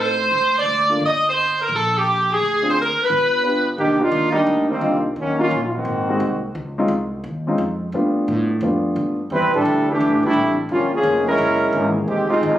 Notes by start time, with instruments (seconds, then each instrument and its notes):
Already playing: upright bass A2, grand piano A3 C4 D#4 G4
0.00 saxophone section C5
0.31 upright bass D2
0.58 saxophone section D5
0.66 upright bass D2
0.89 grand piano A#3 D4 F4 A4
1.00 upright bass G1
1.05 saxophone section D#5
1.29 saxophone section C5
1.62 saxophone section A#4
1.69 upright bass A#1
1.75 saxophone section A4
1.97 saxophone section G4
2.32 saxophone section G#4
2.39 upright bass D2
2.62 grand piano C4 D4 F4 G#4
2.69 saxophone section C5
2.82 saxophone section A#4
2.97 muted upright bass stroke
3.03 saxophone section B4
3.10 upright bass G1
3.44 grand piano B3 D4 F4 G4
3.78 upright bass C2, trombone section D#3 A#3 D4 G4
4.00 trombone section A#3 D4 D#4 F4
4.12 upright bass D#2
4.32 trombone section G3 A#3 D4 D#4
4.47 upright bass D2
4.69 trombone section D#3 G3 A#3 C4
4.81 upright bass C2, grand piano G3 A#3 D4 D#4 F4
5.16 upright bass D#2, trombone section D#3 F#3 A#3 C#4
5.38 grand piano F#3 A#3 C#4 D#4 F4, trombone section F#3 A#3 C#4 F4
5.51 upright bass A#1
5.64 trombone section F4
5.73 trombone section D#3 A#3 C4 F#4
5.85 upright bass G#1
6.08 grand piano G#3 A#3 C4 D#4 F#4
6.20 upright bass C2
6.55 upright bass C#2
6.78 grand piano G#3 C4 C#4 D#4 F4
6.88 upright bass C2
7.24 upright bass D#2
7.47 grand piano G#3 C4 C#4 D#4 F4
7.58 upright bass F2
7.92 upright bass G2, grand piano G3 A3 B3 D4 F4
8.28 upright bass A2
8.61 upright bass F2, grand piano G3 A3 B3 D4 F4
8.96 upright bass G2
9.30 upright bass E2, trombone section G3 C4 E4 B4
9.42 upright bass C2
9.54 upright bass A1, trombone section G3 D4 E4 A4
9.65 upright bass D2
9.90 trombone section E3 A3 D4 G4
10.01 upright bass C2
10.11 upright bass A1
10.23 upright bass G1, trombone section G3 A3 D4 E4
10.33 upright bass A1, grand piano G3 A3 C4 D4 E4
10.69 upright bass G1, grand piano F3 A#3 C#4 F4, trombone section G3 A#3 C#4 F4
10.94 trombone section F3 A#3 C#4 G#4
11.03 upright bass F1
11.28 trombone section G#3 C#4 E4 A#4
11.38 upright bass F#1
11.73 upright bass G#1, grand piano E3 G#3 A#3 C#4 G#4
12.07 upright bass F1, trombone section D#3 G#3 C4 G4
12.30 trombone section G#3 C4 D#4 F4
12.43 upright bass G1